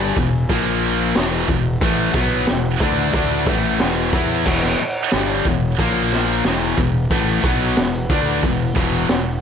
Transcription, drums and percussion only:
0.17 kick
0.49 kick, open hi-hat
1.15 snare, open hi-hat
1.48 kick
1.81 kick, open hi-hat
2.14 kick
2.47 snare, open hi-hat
2.80 kick
3.13 kick, open hi-hat
3.47 kick, snare
3.79 snare, open hi-hat
4.13 kick
4.45 kick, crash
4.63 snare
5.11 snare, open hi-hat
5.45 kick
5.79 kick, open hi-hat
6.12 snare
6.44 snare, open hi-hat
6.78 kick
7.10 kick, open hi-hat
7.44 kick
7.77 snare, open hi-hat
8.10 kick
8.43 kick, open hi-hat
8.76 kick
9.09 snare, open hi-hat

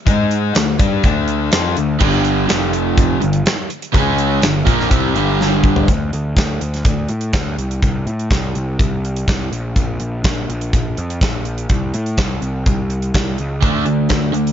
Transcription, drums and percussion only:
0.07 kick, closed hi-hat
0.31 closed hi-hat
0.55 snare, closed hi-hat
0.79 kick, closed hi-hat
1.03 kick, closed hi-hat
1.28 closed hi-hat
1.52 snare, closed hi-hat
1.77 closed hi-hat
2.00 kick, crash
2.25 closed hi-hat
2.49 snare, closed hi-hat
2.73 closed hi-hat
2.98 kick, closed hi-hat
3.22 closed hi-hat
3.33 closed hi-hat
3.46 snare, closed hi-hat
3.70 closed hi-hat
3.82 closed hi-hat
3.94 kick, closed hi-hat
4.18 closed hi-hat
4.42 snare, closed hi-hat
4.67 kick, closed hi-hat
4.80 snare
4.91 kick, closed hi-hat
5.16 closed hi-hat
5.41 snare
5.64 kick
5.76 floor tom
5.88 kick, closed hi-hat
6.13 closed hi-hat
6.37 kick, snare, closed hi-hat
6.61 closed hi-hat
6.74 snare, closed hi-hat
6.85 kick, closed hi-hat
7.08 closed hi-hat
7.21 closed hi-hat
7.33 kick, snare, closed hi-hat
7.58 closed hi-hat
7.71 closed hi-hat
7.82 kick, closed hi-hat
8.07 closed hi-hat
8.19 closed hi-hat
8.30 kick, snare, closed hi-hat
8.55 closed hi-hat
8.79 kick, closed hi-hat
9.05 closed hi-hat
9.16 closed hi-hat
9.28 kick, snare, closed hi-hat
9.53 closed hi-hat
9.76 kick, closed hi-hat
10.00 closed hi-hat
10.24 kick, snare, closed hi-hat
10.50 closed hi-hat
10.61 closed hi-hat
10.73 kick, closed hi-hat
10.97 closed hi-hat
11.10 closed hi-hat
11.21 kick, snare, closed hi-hat
11.45 closed hi-hat
11.58 closed hi-hat
11.69 kick, closed hi-hat
11.94 closed hi-hat
12.06 closed hi-hat
12.17 kick, snare, closed hi-hat
12.42 closed hi-hat
12.66 kick, closed hi-hat
12.90 closed hi-hat
13.02 closed hi-hat
13.14 kick, snare, closed hi-hat
13.38 closed hi-hat
13.62 kick, closed hi-hat
13.86 closed hi-hat
14.09 kick, snare, closed hi-hat
14.34 closed hi-hat
14.47 closed hi-hat

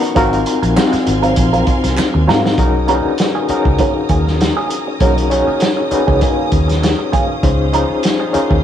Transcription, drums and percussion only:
0.03 closed hi-hat
0.16 kick, closed hi-hat
0.33 closed hi-hat
0.46 closed hi-hat
0.63 closed hi-hat
0.77 snare, clap
0.93 snare, closed hi-hat
1.07 closed hi-hat
1.23 closed hi-hat
1.36 kick, closed hi-hat
1.53 closed hi-hat
1.67 kick, closed hi-hat
1.84 snare, closed hi-hat
1.97 snare, clap
2.29 snare
2.46 snare
2.58 kick, closed hi-hat
2.88 closed hi-hat
3.18 snare, closed hi-hat
3.49 closed hi-hat
3.65 kick
3.78 kick, closed hi-hat
4.09 kick, closed hi-hat
4.28 snare
4.41 snare, closed hi-hat
4.70 closed hi-hat
5.00 kick, closed hi-hat
5.18 closed hi-hat
5.31 closed hi-hat
5.60 snare, closed hi-hat
5.91 closed hi-hat
6.08 kick
6.21 kick, closed hi-hat
6.52 kick, closed hi-hat
6.69 snare, closed hi-hat
6.83 snare, closed hi-hat
7.13 kick, closed hi-hat
7.43 kick, closed hi-hat
7.73 closed hi-hat
8.03 snare, closed hi-hat
8.34 closed hi-hat
8.51 kick

